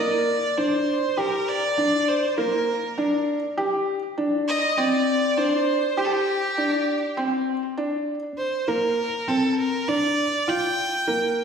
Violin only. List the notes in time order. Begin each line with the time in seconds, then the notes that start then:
0.00 D5
0.58 C5
1.19 A#4
1.49 D5
2.08 C5
2.38 A#4
4.48 D#5
4.78 D5
5.38 C5
5.98 G4
6.05 A4
6.12 G4
8.38 C5
8.68 A#4
9.28 A4
9.58 A#4
9.88 D5
10.48 G5